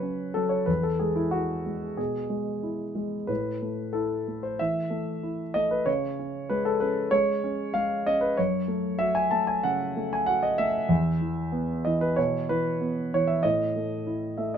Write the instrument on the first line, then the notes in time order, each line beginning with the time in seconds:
grand piano
Already playing: C#3 F#3 B4 C#5
0.03 C#4
0.34 F#3 A4
0.49 C#5
0.66 E2 B4
0.83 A4
0.99 G#3 G#4
1.16 E4
1.31 E4 F#4
1.66 G#3
1.97 B2 G#4
2.30 G#3
2.63 E4
2.95 G#3
3.27 A2 B4
3.62 A3
3.93 E4 A4
4.28 A3
4.43 C5
4.59 E3 E5
4.90 A3
5.23 E4
5.54 A3 D#5
5.71 B4
5.86 C#3 C#5
6.19 C#4
6.50 G#3 B4
6.65 A4
6.80 C#4 B4
7.11 G#3 C#5
7.44 C#4
7.74 G#3 F5
8.07 C#4 D#5
8.21 B4
8.37 F#2 C#5
8.68 A3
8.99 F#4 E5
9.15 G#5
9.31 A3 A5
9.47 G#5
9.63 C#3 F#5
9.97 A3
10.13 G#5
10.26 F#4 F#5
10.43 D#5
10.58 A3 E5
10.89 E2
11.21 E3
11.52 B3
11.85 E3 D#5
12.01 B4
12.16 B2 C#5
12.49 E3 B4
12.81 B3
13.14 E3 C#5
13.27 E5
13.43 A2 D#5
13.76 A3
14.07 E4
14.37 A3 E5
14.54 D#5